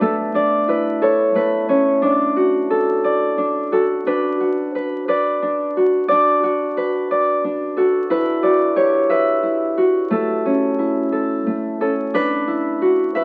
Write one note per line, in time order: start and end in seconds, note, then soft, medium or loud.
0.00 1.34 A3 medium
0.00 2.45 B3 medium
0.00 0.34 D4 medium
0.00 1.11 F#4 medium
0.00 0.11 A4 medium
0.00 0.68 B4 medium
0.00 0.35 D5 medium
0.00 0.40 E5 medium
0.34 1.08 D4 medium
0.34 1.08 D5 medium
0.68 3.29 E4 medium
0.68 1.35 B4 medium
1.02 2.70 A4 medium
1.02 1.69 C#5 medium
1.35 4.68 A3 medium
1.35 3.41 B4 medium
1.69 2.08 C#4 medium
1.69 2.08 C#5 medium
2.02 3.37 D4 medium
2.02 3.04 D5 medium
2.36 3.72 F#4 medium
2.70 3.72 A4 medium
3.04 4.89 D5 medium
3.38 4.06 D4 medium
3.72 4.40 F#4 medium
3.72 3.82 A4 medium
4.06 5.42 D4 medium
4.06 4.75 B4 medium
4.40 5.76 F#4 medium
4.75 5.08 B4 medium
5.08 6.77 B4 medium
5.08 6.08 D5 medium
5.42 6.10 D4 medium
5.77 6.43 F#4 medium
6.08 7.44 D4 medium
6.08 7.11 D5 loud
6.43 7.77 F#4 medium
6.77 8.10 B4 medium
7.11 8.42 D5 medium
7.44 8.83 D4 medium
7.77 8.43 F#4 medium
7.77 9.96 A4 medium
8.10 9.43 E4 medium
8.10 9.10 B4 medium
8.43 9.77 F#4 medium
8.43 8.83 D5 medium
8.76 11.11 G4 medium
8.76 10.68 C#5 medium
9.10 11.15 B4 medium
9.10 10.82 E5 medium
9.43 10.78 E4 medium
9.78 12.21 F#4 medium
10.11 11.46 A3 medium
10.11 11.12 A4 medium
10.45 11.80 C#4 medium
10.79 12.47 E4 medium
11.12 11.81 A4 medium
11.46 13.24 A3 medium
11.81 12.20 C#4 medium
11.81 11.90 A4 medium
12.14 13.24 D4 medium
12.14 13.15 B4 loud
12.48 13.24 E4 medium
12.82 13.24 F#4 medium
13.15 13.24 B4 medium
13.15 13.24 E5 medium